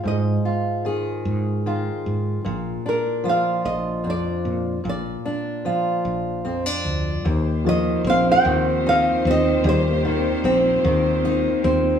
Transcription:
<<
  \new Staff \with { instrumentName = "Nylon-string guitar" } { \time 6/8 \key ees \major \tempo 4. = 50 ees''4 r2 | r8 bes'8 f''8 ees''8 d''4 | d''2 r4 | r8 ees''8 f''16 g''8. f''8 ees''8 |
c''2 r4 | }
  \new Staff \with { instrumentName = "String section" } { \time 6/8 \key ees \major r2. | r2. | r2. | <ees bes f' g' c''>2.~ |
<ees bes f' g' c''>2. | }
  \new Staff \with { instrumentName = "Steel-string acoustic guitar" } { \time 6/8 \key ees \major << { r8 f'8 aes'4 f'4 | r8 d'8 f'4 d'4 | r8 d'8 f'4 c'16 d'8. | r4 c'4 ees'8 c'8 |
r4 c'4 ees'8 c'8 | } \\ { aes,4 ees4 ees4 | bes,4 f4 f,4 | bes,4 f4 f,4 | ees,8 ees4 ees4. |
ees,8 ees4 ees4. | } >> }
  \new Staff \with { instrumentName = "Felt piano" } { \clef bass \time 6/8 \key ees \major r2. | r2. | r2. | r8 f2~ f16 r16 |
g16 bes16 c'2~ c'16 r16 | }
  \new Staff \with { instrumentName = "Fretless electric bass" } { \clef bass \time 6/8 \key ees \major aes,8 r4 aes,4 aes,8 | bes,,8 r4 bes,,4 bes,8 | bes,,8 r4 bes,,4 d,8 | ees,4 bes,,8 ees,4 ees,8 |
ees,4 bes,,8 ees,4 ees,8 | }
>>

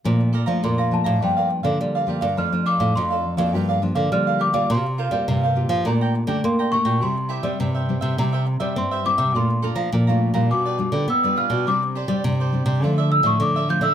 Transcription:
<<
  \new Staff \with { instrumentName = "Celesta" } { \time 4/4 \key c \mixolydian \tempo 4 = 103 r4 c'''8 a''8 g''8 r4. | f'''8 d'''8 c'''8 r4. f'''8 d'''8 | c'''8 r4. bes''4 c'''8 des'''8 | c'''8 r4. bes''4 c'''8 d'''8 |
c'''8 r4. d'''4 e'''8 f'''8 | d'''8 r2 e'''16 des'''16 d'''8 g'''16 e'''16 | }
  \new Staff \with { instrumentName = "Cavaquinho" } { \time 4/4 \key c \mixolydian <a' d'' f'' bes''>16 r16 <a' d'' f'' bes''>16 <d'' f'' bes''>16 <a' d'' f'' bes''>16 <d'' f'' bes''>8 <d'' f'' bes''>16 <g' bes' d'' f''>16 <bes' d'' f''>16 r16 <bes' d'' f''>8 <bes' d'' f''>16 <g' bes' d'' f''>16 <bes' d'' f''>16 | <d' a' d'' f''>16 r16 <d' a' d'' f''>16 <a' d'' f''>16 <d' a' d'' f''>16 <a' d'' f''>8 <a' d'' f''>16 <g' bes' d'' f''>16 <bes' d'' f''>16 r16 <bes' d'' f''>8 <bes' d'' f''>16 <g' bes' d'' f''>16 <bes' d'' f''>16 | <f' bes' c'' f''>16 r16 <f' bes' c'' f''>16 <bes' c'' f''>16 <f' bes' c'' f''>16 <bes' c'' f''>8 <bes' c'' f''>16 <a' d'' g'' bes''>16 <d'' g'' bes''>16 r16 <d'' g'' bes''>8 <d'' g'' bes''>16 <a' d'' g'' bes''>16 <d'' g'' bes''>16 | <e' g' c'' e''>16 r16 <e' g' c'' e''>16 <g' c'' e''>16 <e' g' c'' e''>16 <g' c'' e''>8 <g' c'' e''>16 <e' g' c'' e''>16 <g' c'' e''>16 r16 <g' c'' e''>8 <g' c'' e''>16 <e' g' c'' e''>16 <g' c'' e''>16 |
<a' d'' f'' bes''>16 r16 <a' d'' f'' bes''>16 <d'' f'' bes''>16 <a' d'' f'' bes''>16 <d'' f'' bes''>8 <d'' f'' bes''>16 <f' g' b' d''>16 <g' b' d''>16 r16 <g' b' d''>8 <g' b' d''>16 <f' g' b' d''>16 <g' b' d''>16 | <d' g' c'' d''>16 r16 <d' g' c'' d''>16 <g' c'' d''>16 <d' g' c'' d''>16 <g' c'' d''>8 <g' c'' d''>16 <f' a' d'' e''>16 <a' d'' e''>16 r16 <a' d'' e''>8 <a' d'' e''>16 <f' a' d'' e''>16 <a' d'' e''>16 | }
  \new Staff \with { instrumentName = "Nylon-string guitar" } { \time 4/4 \key c \mixolydian << { <f a d'>8 r16 <f a d'>8. <f a d'>8 <f bes d'>8. <f bes d'>8. <f bes d'>16 r16 | <f a d'>16 <f a d'>8. <f a d'>8 r16 <f bes d'>8. <f bes d'>8 <f bes d'>8. <bes f' g'>16~ | <bes f' g'>16 r8 <bes f' g'>8. <bes f' g'>8 <a d' g'>8. <a d' g'>8. <a d' g'>8 | <g c' e'>8. <g c' e'>8. <g c' e'>8 <g c' e'>8. <g c' e'>8. <g c' e'>16 r16 |
<a d' f'>8 <a d' f'>8 r16 <a d' f'>8 <g d' f'>8. <g d' f'>8 r16 <g d' f'>8. | <g c' d'>8 r16 <g c' d'>8. <g c' d'>8 <f a e'>8. <f a e'>8. <f a e'>16 r16 | } \\ { bes,4 f,4 g,4 d4 | f,4 f,4 g,4 d4 | c4 g,4 bes,4 bes,4 | c4 g,4 c4 g,4 |
bes,4 f4 b,4 b,4 | c4 g,4 d4 a,4 | } >> }
  \new Staff \with { instrumentName = "Nylon-string guitar" } { \clef bass \time 4/4 \key c \mixolydian bes,8. f16 bes,8. a,16 g,8. d16 g8. g,16 | f,8. a,16 f,8. f,16 g,8. d16 g8. g16 | c8. g16 c8. f16 bes,8. d16 bes8. bes,16 | c8. g16 c8. c16 c8. g16 c'8. c16 |
bes,8. f16 bes,8. bes,16 b,8. d16 b8. b,16 | c8. g16 c8. c16 d8. a,16 d8. d16 | }
>>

